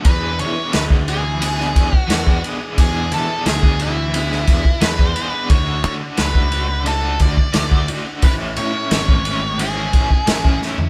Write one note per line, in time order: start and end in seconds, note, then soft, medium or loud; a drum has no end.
0.04 0.41 E2 loud
0.04 0.73 E3 medium
0.04 0.59 B3 medium
0.04 0.57 D4 loud
0.04 0.56 G#4 medium
0.04 0.40 B4 medium
0.04 kick loud
0.04 ride medium
0.39 0.55 E3 medium
0.39 0.71 C#5 medium
0.39 ride medium
0.56 0.74 B3 medium
0.56 0.75 D4 medium
0.56 0.76 G#4 medium
0.73 1.72 D2 medium
0.73 1.07 E3 medium
0.73 1.08 B3 medium
0.73 1.08 D4 medium
0.73 1.10 G#4 medium
0.73 0.83 B4 medium
0.73 snare loud
0.73 ride medium
0.90 kick medium
1.07 1.39 E3 medium
1.07 1.24 B3 medium
1.07 1.24 D4 medium
1.07 1.98 G#4 medium
1.07 1.23 G#4 medium
1.07 ride medium
1.24 muted overdriven electric guitar stroke soft
1.40 1.92 E3 medium
1.40 1.60 B3 medium
1.40 1.59 D4 medium
1.40 1.56 G#4 medium
1.40 ride medium
1.57 1.93 D4 medium
1.57 1.91 G#4 medium
1.57 snare soft
1.62 1.92 B3 medium
1.76 1.92 E2 medium
1.76 kick medium
1.76 ride medium
1.92 muted overdriven electric guitar stroke medium
1.92 kick medium
1.98 2.40 F#4 medium
2.08 2.41 E2 medium
2.08 2.40 E3 medium
2.08 2.42 B3 medium
2.08 2.43 D4 medium
2.08 2.44 G#4 medium
2.08 snare loud
2.08 ride medium
2.27 kick medium
2.42 2.76 E3 medium
2.42 2.62 B3 medium
2.42 2.61 D4 medium
2.42 2.58 G#4 medium
2.42 ride medium
2.59 2.77 B3 soft
2.59 2.79 D4 medium
2.59 2.79 G#4 medium
2.77 3.13 E2 loud
2.77 3.43 E3 medium
2.77 3.30 B3 medium
2.77 3.30 D4 medium
2.77 3.11 G#4 medium
2.77 3.27 G#4 medium
2.77 kick loud
2.77 ride medium
3.12 3.28 E3 medium
3.12 3.47 A4 medium
3.12 snare soft
3.12 ride medium
3.29 3.45 B3 medium
3.29 3.46 D4 medium
3.29 3.47 G#4 medium
3.45 4.44 D2 medium
3.45 3.77 E3 medium
3.45 3.79 B3 medium
3.45 3.80 D4 medium
3.45 3.81 G#4 medium
3.45 snare loud
3.45 ride medium
3.63 kick medium
3.79 4.12 E3 medium
3.79 3.97 B3 medium
3.79 3.97 D4 medium
3.79 4.79 E4 medium
3.79 3.96 G#4 medium
3.79 ride medium
3.98 muted overdriven electric guitar stroke soft
4.14 4.65 E3 medium
4.14 4.32 B3 medium
4.14 4.31 D4 medium
4.14 4.29 G#4 medium
4.14 ride medium
4.30 4.65 B3 medium
4.30 4.64 D4 medium
4.30 4.64 G#4 medium
4.30 snare soft
4.47 4.64 E2 medium
4.47 kick medium
4.47 ride medium
4.65 muted overdriven electric guitar stroke soft
4.65 kick medium
4.81 5.14 E2 loud
4.81 5.14 E3 medium
4.81 5.16 B3 medium
4.81 5.17 D4 medium
4.81 5.18 G#4 medium
4.81 5.50 B4 medium
4.81 snare loud
4.81 ride medium
4.99 kick medium
5.15 5.48 E3 medium
5.15 5.35 B3 medium
5.15 5.34 D4 medium
5.15 ride medium
5.20 5.32 G#4 medium
5.33 5.50 B3 medium
5.33 5.49 D4 medium
5.33 5.48 G#4 medium
5.50 5.84 D2 loud
5.50 6.17 D3 medium
5.50 6.04 A3 medium
5.50 6.01 D4 medium
5.50 5.99 F#4 loud
5.50 5.83 C#5 medium
5.50 kick loud
5.50 ride medium
5.84 6.00 D3 medium
5.84 5.93 C#5 medium
5.84 ride medium
6.00 6.19 A3 medium
6.00 6.19 D4 medium
6.00 6.20 F#4 medium
6.17 7.17 C#2 loud
6.17 6.49 D3 medium
6.17 6.52 A3 medium
6.17 6.52 D4 medium
6.17 6.54 F#4 medium
6.17 6.83 B4 medium
6.17 snare loud
6.17 ride medium
6.35 kick medium
6.51 6.83 D3 medium
6.51 6.68 A3 medium
6.51 6.68 D4 medium
6.51 ride medium
6.55 6.67 F#4 medium
6.68 muted overdriven electric guitar stroke medium
6.85 7.37 D3 medium
6.85 7.04 A3 medium
6.85 7.02 D4 medium
6.85 7.00 F#4 medium
6.85 7.19 A4 medium
6.85 ride medium
7.01 7.37 A3 medium
7.01 7.37 D4 medium
7.01 7.36 F#4 medium
7.19 7.37 D2 medium
7.19 7.86 D5 medium
7.19 kick medium
7.19 ride medium
7.37 muted overdriven electric guitar stroke soft
7.37 kick medium
7.53 7.87 D2 loud
7.53 7.86 D3 medium
7.53 7.87 A3 medium
7.53 7.88 D4 medium
7.53 7.89 F#4 medium
7.53 snare loud
7.53 ride medium
7.72 kick medium
7.87 8.20 D3 medium
7.87 8.08 A3 medium
7.87 8.06 D4 medium
7.87 8.05 F#4 medium
7.87 ride medium
8.06 8.23 A3 medium
8.06 8.22 D4 medium
8.06 8.21 F#4 medium
8.22 8.58 A1 loud
8.22 8.88 A2 medium
8.22 8.89 E3 medium
8.22 8.75 A3 medium
8.22 8.73 C#4 medium
8.22 8.72 E4 medium
8.22 8.33 B4 medium
8.22 kick loud
8.22 ride medium
8.56 8.74 A2 medium
8.56 9.63 C#5 medium
8.56 ride medium
8.73 8.91 A3 medium
8.73 8.91 C#4 medium
8.73 8.92 E4 medium
8.89 9.90 G#1 medium
8.89 9.59 A2 medium
8.89 9.24 E3 medium
8.89 9.26 A3 medium
8.89 9.27 C#4 medium
8.89 9.28 E4 medium
8.89 snare loud
8.89 ride medium
9.09 kick medium
9.25 9.44 E3 medium
9.25 9.43 A3 medium
9.25 9.42 C#4 medium
9.25 ride medium
9.29 9.42 E4 medium
9.43 muted overdriven electric guitar stroke soft
9.59 10.09 E3 medium
9.59 9.77 A3 medium
9.59 9.75 C#4 medium
9.59 9.74 E4 medium
9.59 10.58 G#4 medium
9.59 ride medium
9.75 10.10 A3 medium
9.75 10.09 C#4 medium
9.75 10.09 E4 medium
9.93 10.10 A1 medium
9.93 kick medium
9.93 ride medium
10.10 muted overdriven electric guitar stroke soft
10.10 kick medium
10.26 10.60 A1 medium
10.26 10.89 A2 medium
10.26 10.60 E3 medium
10.26 10.62 A3 medium
10.26 10.62 C#4 medium
10.26 10.63 E4 loud
10.26 snare loud
10.26 ride medium
10.45 kick medium
10.61 10.89 E3 medium
10.61 10.79 A3 medium
10.61 10.78 C#4 medium
10.61 10.75 E4 medium
10.61 snare medium
10.77 10.89 A3 soft
10.77 10.89 C#4 medium
10.77 10.89 E4 medium
10.77 floor tom medium